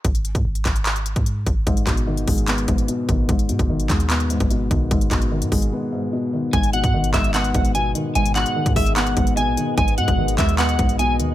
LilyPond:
<<
  \new Staff \with { instrumentName = "Clean electric guitar" } { \time 4/4 \key gis \minor \tempo 4 = 148 r1 | r1 | r1 | r1 |
gis''8 fis''4 e''8 fis''4 gis''8 r8 | gis''8 fis''4 e''8 fis''4 gis''4 | gis''8 fis''4 e''8 fis''4 gis''8 r8 | }
  \new Staff \with { instrumentName = "Ambient pad" } { \time 4/4 \key gis \minor << { r1 | r1 | r1 | r1 |
<gis b' dis''>1~ | <gis b' dis''>1~ | <gis b' dis''>1 | } \\ { r1 | r1 | r1 | r1 |
gis'1~ | gis'1 | gis'1 | } >> }
  \new Staff \with { instrumentName = "Felt piano" } { \clef bass \time 4/4 \key gis \minor r1 | gis,8 b,8 dis8 gis8 b8 gis,8 b,8 dis8 | gis,8 b,8 dis8 gis8 b8 gis,8 b,8 dis8 | gis,8 b,8 dis8 gis8 b8 gis,8 b,8 dis8 |
gis,8 b,8 dis8 gis8 b8 gis,8 b,8 dis8 | gis,8 b,8 dis8 gis8 b8 gis,8 b,8 dis8 | gis,8 b,8 dis8 gis8 b8 gis,8 b,8 dis8 | }
  \new Staff \with { instrumentName = "808-style bass" } { \clef bass \time 4/4 \key gis \minor gis,,8. gis,16 gis,,8 gis,,4~ gis,,16 gis,8. gis,,8 | gis,,8 gis,,4 gis,,4 gis,,8 r8 gis,,8 | gis,,8 gis,16 gis,,16 gis,,8 dis,4~ dis,16 gis,,8. b,,8 | gis,,8 gis,,8. gis,16 gis,,8 r2 |
gis,,8. gis,16 gis,,8 gis,,4 gis,,4 r8 | gis,,8. r8 gis,16 gis,,4 gis,,8. ais,,16 r8 | gis,,8 gis,16 gis,,16 gis,,8 dis,4 b,,4 dis,8 | }
  \new DrumStaff \with { instrumentName = "Drums" } \drummode { \time 4/4 <hh bd>16 hh16 hh16 <hh bd>16 r16 hh16 <hc hh bd>16 hh16 <hc hh>16 hh16 hh16 <hh bd>16 hh8 <hh bd>8 | <hh bd>16 hh16 <hc hh bd>16 hh16 r16 hh16 <hh hho bd>16 hh16 <hc hh>16 hh16 <hh bd>16 hh16 hh8 <hh bd>8 | <hh bd>16 hh16 hh16 <hh bd>16 r16 hh16 <hc hh bd>16 hh16 <hc hh>16 hh16 hh16 <hh bd>16 hh8 <hh bd>8 | <hh bd>16 hh16 <hc hh bd>16 hh16 r16 hh16 <hho bd>16 hh16 r4 r4 |
<hh bd>16 hh16 hh16 <hh bd>16 r16 hh16 <hc hh bd>16 hh16 <hc hh>16 hh16 <hh bd>16 hh16 hh8 hh8 | hh16 hh16 <hc hh>16 hh16 r16 <hh bd>16 <hho bd>16 hh16 <hc hh>16 hh16 <hh bd>16 hh16 hh8 hh8 | <hh bd>16 hh16 hh16 <hh bd>16 r16 hh16 <hc hh bd>16 hh16 <hc hh>16 hh16 <hh bd>16 hh16 hh8 hh8 | }
>>